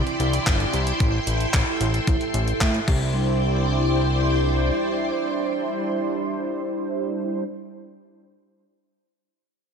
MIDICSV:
0, 0, Header, 1, 5, 480
1, 0, Start_track
1, 0, Key_signature, 0, "major"
1, 0, Tempo, 535714
1, 899, Time_signature, 4, 2, 24, 8
1, 8724, End_track
2, 0, Start_track
2, 0, Title_t, "String machine"
2, 0, Program_c, 0, 50
2, 0, Note_on_c, 0, 64, 84
2, 0, Note_on_c, 0, 74, 77
2, 0, Note_on_c, 0, 79, 77
2, 0, Note_on_c, 0, 84, 91
2, 880, Note_off_c, 0, 74, 0
2, 899, Note_on_c, 0, 69, 77
2, 2543, Note_off_c, 0, 64, 0
2, 2543, Note_off_c, 0, 79, 0
2, 2543, Note_off_c, 0, 84, 0
2, 2562, Note_off_c, 0, 69, 0
2, 2577, Note_on_c, 0, 84, 90
2, 2578, Note_on_c, 0, 64, 81
2, 2578, Note_on_c, 0, 72, 72
2, 2578, Note_on_c, 0, 74, 74
2, 2578, Note_on_c, 0, 79, 75
2, 6663, Note_off_c, 0, 64, 0
2, 6663, Note_off_c, 0, 72, 0
2, 6663, Note_off_c, 0, 74, 0
2, 6663, Note_off_c, 0, 79, 0
2, 6663, Note_off_c, 0, 84, 0
2, 8724, End_track
3, 0, Start_track
3, 0, Title_t, "Analog polysynth"
3, 0, Program_c, 1, 90
3, 0, Note_on_c, 1, 48, 89
3, 0, Note_on_c, 1, 60, 83
3, 0, Note_on_c, 1, 64, 83
3, 0, Note_on_c, 1, 67, 79
3, 0, Note_on_c, 1, 74, 97
3, 150, Note_off_c, 1, 48, 0
3, 150, Note_off_c, 1, 60, 0
3, 150, Note_off_c, 1, 64, 0
3, 150, Note_off_c, 1, 67, 0
3, 150, Note_off_c, 1, 74, 0
3, 178, Note_on_c, 1, 48, 90
3, 178, Note_on_c, 1, 74, 97
3, 179, Note_on_c, 1, 64, 86
3, 179, Note_on_c, 1, 67, 84
3, 510, Note_off_c, 1, 48, 0
3, 510, Note_off_c, 1, 64, 0
3, 510, Note_off_c, 1, 67, 0
3, 510, Note_off_c, 1, 74, 0
3, 539, Note_on_c, 1, 64, 82
3, 540, Note_on_c, 1, 48, 93
3, 540, Note_on_c, 1, 60, 85
3, 540, Note_on_c, 1, 67, 86
3, 540, Note_on_c, 1, 74, 102
3, 870, Note_off_c, 1, 48, 0
3, 870, Note_off_c, 1, 64, 0
3, 870, Note_off_c, 1, 67, 0
3, 870, Note_off_c, 1, 74, 0
3, 871, Note_off_c, 1, 60, 0
3, 900, Note_on_c, 1, 72, 86
3, 901, Note_on_c, 1, 45, 79
3, 1176, Note_off_c, 1, 72, 0
3, 1177, Note_off_c, 1, 45, 0
3, 1259, Note_on_c, 1, 45, 80
3, 1259, Note_on_c, 1, 72, 86
3, 1590, Note_off_c, 1, 45, 0
3, 1590, Note_off_c, 1, 72, 0
3, 1619, Note_on_c, 1, 45, 88
3, 1619, Note_on_c, 1, 72, 101
3, 1792, Note_off_c, 1, 45, 0
3, 1792, Note_off_c, 1, 72, 0
3, 1859, Note_on_c, 1, 45, 88
3, 1859, Note_on_c, 1, 57, 82
3, 1859, Note_on_c, 1, 72, 101
3, 2070, Note_off_c, 1, 45, 0
3, 2070, Note_off_c, 1, 57, 0
3, 2070, Note_off_c, 1, 72, 0
3, 2459, Note_on_c, 1, 45, 73
3, 2579, Note_off_c, 1, 45, 0
3, 2579, Note_on_c, 1, 72, 89
3, 2580, Note_on_c, 1, 55, 84
3, 2580, Note_on_c, 1, 62, 75
3, 6664, Note_off_c, 1, 72, 0
3, 6665, Note_off_c, 1, 55, 0
3, 6665, Note_off_c, 1, 62, 0
3, 8724, End_track
4, 0, Start_track
4, 0, Title_t, "Analog synth bass"
4, 0, Program_c, 2, 38
4, 178, Note_on_c, 2, 36, 80
4, 351, Note_off_c, 2, 36, 0
4, 420, Note_on_c, 2, 31, 100
4, 592, Note_off_c, 2, 31, 0
4, 659, Note_on_c, 2, 36, 92
4, 831, Note_off_c, 2, 36, 0
4, 899, Note_on_c, 2, 33, 93
4, 1071, Note_off_c, 2, 33, 0
4, 1138, Note_on_c, 2, 33, 79
4, 1311, Note_off_c, 2, 33, 0
4, 1379, Note_on_c, 2, 33, 84
4, 1465, Note_off_c, 2, 33, 0
4, 1618, Note_on_c, 2, 33, 96
4, 1791, Note_off_c, 2, 33, 0
4, 1859, Note_on_c, 2, 33, 86
4, 1945, Note_off_c, 2, 33, 0
4, 2098, Note_on_c, 2, 33, 85
4, 2271, Note_off_c, 2, 33, 0
4, 2339, Note_on_c, 2, 45, 96
4, 2511, Note_off_c, 2, 45, 0
4, 2579, Note_on_c, 2, 36, 89
4, 4223, Note_off_c, 2, 36, 0
4, 8724, End_track
5, 0, Start_track
5, 0, Title_t, "Drums"
5, 60, Note_on_c, 9, 42, 35
5, 150, Note_off_c, 9, 42, 0
5, 179, Note_on_c, 9, 42, 75
5, 269, Note_off_c, 9, 42, 0
5, 299, Note_on_c, 9, 42, 46
5, 389, Note_off_c, 9, 42, 0
5, 419, Note_on_c, 9, 36, 114
5, 419, Note_on_c, 9, 39, 117
5, 419, Note_on_c, 9, 42, 76
5, 509, Note_off_c, 9, 36, 0
5, 509, Note_off_c, 9, 39, 0
5, 509, Note_off_c, 9, 42, 0
5, 540, Note_on_c, 9, 42, 34
5, 629, Note_off_c, 9, 42, 0
5, 659, Note_on_c, 9, 42, 72
5, 748, Note_off_c, 9, 42, 0
5, 778, Note_on_c, 9, 42, 49
5, 868, Note_off_c, 9, 42, 0
5, 898, Note_on_c, 9, 42, 72
5, 899, Note_on_c, 9, 36, 113
5, 988, Note_off_c, 9, 42, 0
5, 989, Note_off_c, 9, 36, 0
5, 1139, Note_on_c, 9, 42, 71
5, 1228, Note_off_c, 9, 42, 0
5, 1259, Note_on_c, 9, 42, 46
5, 1349, Note_off_c, 9, 42, 0
5, 1377, Note_on_c, 9, 39, 122
5, 1377, Note_on_c, 9, 42, 73
5, 1379, Note_on_c, 9, 36, 118
5, 1467, Note_off_c, 9, 39, 0
5, 1467, Note_off_c, 9, 42, 0
5, 1469, Note_off_c, 9, 36, 0
5, 1619, Note_on_c, 9, 42, 71
5, 1708, Note_off_c, 9, 42, 0
5, 1739, Note_on_c, 9, 42, 49
5, 1829, Note_off_c, 9, 42, 0
5, 1858, Note_on_c, 9, 42, 68
5, 1859, Note_on_c, 9, 36, 113
5, 1948, Note_off_c, 9, 42, 0
5, 1949, Note_off_c, 9, 36, 0
5, 1979, Note_on_c, 9, 42, 33
5, 2068, Note_off_c, 9, 42, 0
5, 2098, Note_on_c, 9, 42, 74
5, 2188, Note_off_c, 9, 42, 0
5, 2219, Note_on_c, 9, 42, 45
5, 2308, Note_off_c, 9, 42, 0
5, 2338, Note_on_c, 9, 39, 118
5, 2338, Note_on_c, 9, 42, 74
5, 2339, Note_on_c, 9, 36, 109
5, 2428, Note_off_c, 9, 36, 0
5, 2428, Note_off_c, 9, 39, 0
5, 2428, Note_off_c, 9, 42, 0
5, 2458, Note_on_c, 9, 42, 32
5, 2548, Note_off_c, 9, 42, 0
5, 2579, Note_on_c, 9, 36, 105
5, 2579, Note_on_c, 9, 49, 80
5, 2668, Note_off_c, 9, 36, 0
5, 2668, Note_off_c, 9, 49, 0
5, 8724, End_track
0, 0, End_of_file